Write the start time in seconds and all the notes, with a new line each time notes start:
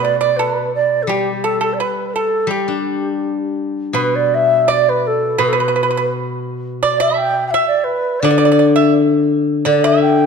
Already playing: B2
0.01 B4 D5
0.19 D5
0.36 A4 B4
0.59 B4
0.74 D5
1.02 A4
1.07 G3 G4
1.43 A4
1.61 A4
1.73 D5
1.79 B4
2.08 B4
2.13 A4
2.47 G3 G4
2.68 D4
3.93 B2 B4
4.15 D5
4.34 E5
4.68 D5
4.89 B4
5.06 A4
5.38 B2 B4
5.47 A4
5.53 B4
5.60 B4
5.68 B4
5.76 B4
5.83 B4
5.90 B4
5.97 B4
6.83 D5
7.00 E5
7.10 A5 B5
7.16 G5
7.47 E5 G5
7.54 E5
7.67 D5
7.83 B4
8.20 D3 D5
8.24 D5
8.31 D5
8.38 D5
8.45 D5
8.52 D5
8.59 D5
8.76 E5
9.65 D3 D5
9.83 E5
10.01 G5